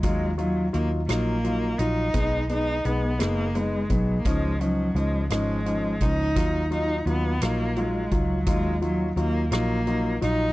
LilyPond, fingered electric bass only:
\new Staff \with { instrumentName = "Fingered electric bass" } { \clef bass \time 6/8 \key ees \minor \tempo 4. = 57 ees,4 ees,8 bes,,4 bes,,8 | b,,4 b,,8 fis,,4 b,,8 | des,4 des,8 aes,,4 des,8 | ees,4 ees,8 bes,,4 des,8 |
ees,4 ees,8 bes,,4 bes,,8 | }